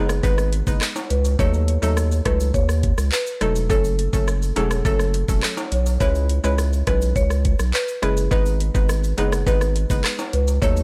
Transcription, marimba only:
Already playing: G#4
0.24 B4
1.10 B4
1.39 C#5
1.82 C#5
2.26 B4
2.54 C#5
3.12 B4
3.41 A4
3.70 A4
4.13 A4
4.56 G#4
4.85 A4
5.72 C#5
6.00 C#5
6.44 C#5
6.87 B4
7.16 C#5
7.74 B4
8.03 G#4
8.31 B4
8.75 B4
9.18 G#4
9.47 B4
10.33 B4
10.62 C#5

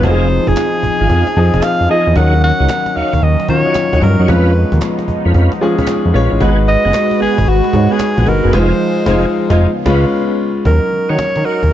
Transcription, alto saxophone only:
0.04 C5
0.48 G#4
1.64 F5
1.91 D#5
2.17 F#5
2.44 F#5
2.97 F5
3.23 D#5
3.50 C#5
4.03 A#4
4.30 B4
6.68 D#5
7.22 G#4
7.48 F#4
7.93 G#4
8.28 A#4
8.55 C5
10.66 A#4
11.10 C#5
11.45 A#4

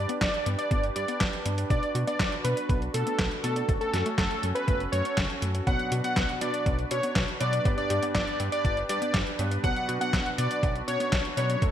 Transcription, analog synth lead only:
Already playing: D5
0.21 D5
0.58 D5
0.96 D5
1.70 D5
2.07 D5
2.44 B4
2.94 A4
3.43 A4
3.81 A4
4.18 A4
4.55 B4
4.92 C#5
5.67 F#5
6.04 F#5
6.41 D5
6.91 C#5
7.41 D5
7.78 D5
8.15 D5
8.52 D5
8.89 D5
9.64 F#5
10.01 F#5
10.38 D5
10.88 C#5
11.37 C#5

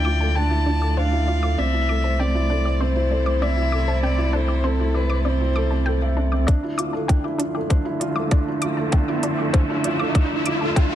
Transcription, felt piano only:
Already playing: D4 E4 F4 A4
0.05 F4
0.21 A4
0.36 D4
0.51 E4
0.66 F4
0.81 A4
0.97 D4
1.12 E4
1.27 F4
1.43 A4
1.58 C4
1.73 E4
1.89 A4
2.04 C5
2.20 C4
2.35 E4
2.50 A4
2.65 C5
2.81 C4
2.96 E4
3.10 A4
3.26 C5
3.41 C4
3.57 E4
3.73 A4
3.88 C5
4.03 C4
4.18 E4
4.33 A4
4.49 C5
4.64 C4
4.80 E4
4.95 A4
5.10 C5
5.25 C4
5.41 E4
5.56 A4
5.72 C4
5.87 A4
6.02 E5
6.17 C4
6.33 C4
6.48 D4
6.64 E4
6.78 F4
6.94 A4
7.08 D4
7.24 E4
7.40 F4
7.55 A4
7.70 D4
7.85 E4
8.01 F4
8.17 A4
8.32 D4
8.48 E4
8.63 F4
8.78 A4
8.93 D4
9.08 E4
9.23 F4
9.39 A4
9.55 D4
9.70 E4
9.85 F4
10.01 A4
10.16 D4
10.31 E4
10.46 F4
10.62 A4
10.77 D4

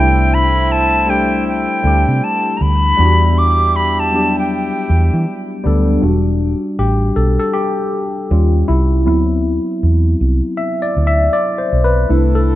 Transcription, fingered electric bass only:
Already playing: C2
1.84 D2
2.08 C3
2.61 D2
2.99 E2
4.90 E2
5.14 E3
5.66 D2
6.03 E1
6.79 A1
7.17 B1
8.31 D#2
8.69 C2
9.07 D2
9.83 E2
10.21 C2
10.97 D2
11.73 B1
12.10 C2

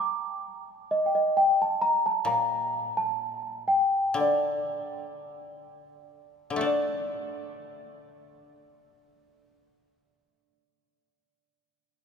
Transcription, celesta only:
0.00 D6
0.91 D#5
1.06 G5
1.15 D#5
1.37 G5
1.62 A5
1.82 A#5
2.06 A5
2.27 A#5
2.97 A5
3.68 G5
4.21 D5
6.66 D5

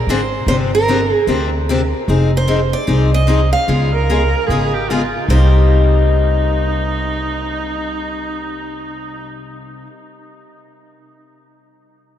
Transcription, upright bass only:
0.07 G#1
0.46 G1
1.27 D2
2.08 F1
2.88 C2
3.68 C#2
4.48 G#1
5.28 C2

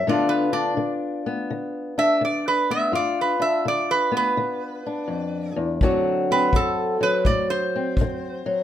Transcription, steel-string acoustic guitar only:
0.07 G2 D3 B3 D4 F4
0.53 D4
0.77 D3
1.26 B3
1.50 D3
1.98 D4
2.21 D3
2.70 B3
2.92 G2 F4
3.40 D4
3.65 D3
4.12 B3
4.37 D3
4.86 D4
5.08 F2
5.56 E2
5.82 D2 D3 F#3 C4 F#4
6.31 C4
6.54 D3
7.01 F#3
7.27 A2
7.76 C4
8.01 D3
8.46 F#3

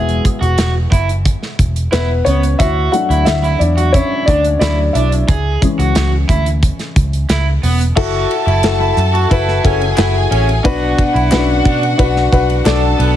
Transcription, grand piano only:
Already playing: G#3 B3 E4 F#4 G#4 E5 F#5 G#5
1.92 B3 B4
2.25 C#4 C#5
2.59 E4 E5
2.92 F#3 A3 D4 F#4 F#5
3.25 E4 E5
3.59 D4 D5
3.92 C#4 C#5
4.26 D4 D5
4.59 F#3 A3 D4 D5
4.93 E4 E5
5.61 E3 G#3 C#4
7.96 E4 F#4 A4
8.64 E4 F#4 A4
9.31 E4 F#4 B4
9.64 E4 F#4 A4
9.97 E4 F#4 A4
10.64 B2 D4 F#4 B4
11.31 C#4 F#4 B4
11.38 D4
11.98 D4 F#4 B4
12.32 D4 F#4 B4
12.65 D4 F#4 A4

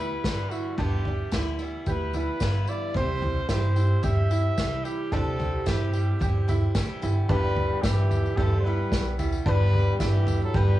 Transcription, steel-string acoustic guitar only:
Already playing: E4
0.00 E3 G3 B3
0.24 G2 D3 E3 G3 B3 E4
0.78 G2 D3 E3 G3 B3 E4
1.04 E3 G3 B3 E4
1.33 G2 D3 E3 G3 B3 E4
1.59 E3 G3 B3 E4
1.86 E3 G3 B3 E4
2.14 E3 G3 B3 E4
2.40 G2 D3 E3 G3 B3 E4
2.95 C3 E3 G3 E4 G4
3.22 G3 E4 G4
3.49 C3 E3 G3 E4 G4
3.76 G3 E4 G4
4.03 E3 G3 E4 G4
4.31 G3 E4 G4
4.58 C3 E3 G3 E4 G4
5.12 C3 E3 G3 E4 G4
5.39 G3 E4 G4
5.66 C3 E3 G3 E4 G4
5.93 G3 E4 G4
6.19 E3 G3 E4 G4
6.48 G3 E4 G4
6.75 C3 E3 G3 E4 G4
7.02 G2 D3 E3 G3 B3 G4
7.29 G2 D3 E3 G3 B3 G4
7.84 G3 B3 G4
8.38 G2 D3 E3 G3 B3 G4
8.64 E3 G3 B3 G4
9.19 E3 G3 B3 G4
9.46 G2 D3 E3 G3 B3 G4
10.01 E3 G3 B3 G4
10.55 G2 D3 E3 G3 B3 G4

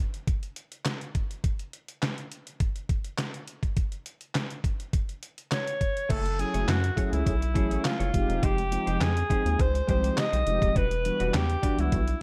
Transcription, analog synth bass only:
6.10 F#1
6.54 F#1
6.68 F#2
7.13 C#2
7.26 B1
7.55 A1
8.00 F#1
8.14 F1
8.29 E1
8.43 F1
8.87 F1
9.01 F2
9.46 D#2
9.59 C#2
9.88 C2
10.33 B1
10.47 F1
10.62 D#1
10.76 E1
11.20 E1
11.34 E2
11.79 C#2
11.92 B1

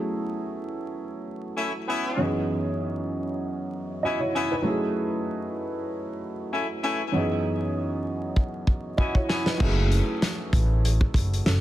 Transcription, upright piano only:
Already playing: F#3 A3 C#4 E4 G#4
2.17 F#2 E3 B3 C#4 D#4
2.22 G#4
4.03 F#4 D#5
4.20 E4 C#5
4.52 D#4 B4
4.62 F#3 A3 C#4 E4
4.67 G#4
7.12 F#2 E3 B3 C#4 D#4
7.17 G#4
8.97 F#4 D#5
9.14 E4 C#5
9.46 D#4 B4
9.58 F#3 A3 C#4 E4
9.63 G#4
11.46 C#4 A4

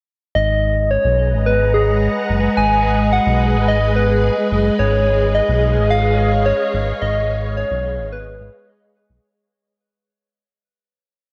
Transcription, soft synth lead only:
0.35 D#5
0.91 C#5
1.46 B4
1.74 G#4
2.57 G#5
3.13 F#5
3.68 D#5
3.96 B4
4.79 C#5
5.35 D#5
5.90 F5
6.46 C#5
7.02 D#5
7.57 C#5
8.13 B4

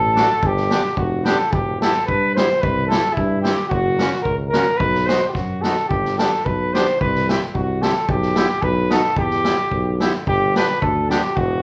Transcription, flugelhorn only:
Already playing: A4
0.46 G4
0.98 F#4
1.26 A4
1.52 G4
1.81 A4
2.06 B4
2.35 C5
2.61 B4
2.87 A4
3.13 E4
3.42 G4
3.68 F#4
4.22 A#4
4.50 A#4
4.77 B4
5.06 C5
5.28 F#4 G4
5.62 A4
5.88 G4
6.18 A4
6.45 B4
6.73 C5
7.01 B4
7.54 F#4
7.82 A4
8.09 G4
8.63 B4
8.92 A4
9.18 G4
10.28 G4
10.57 B4
10.82 A4
11.10 G4
11.36 F#4

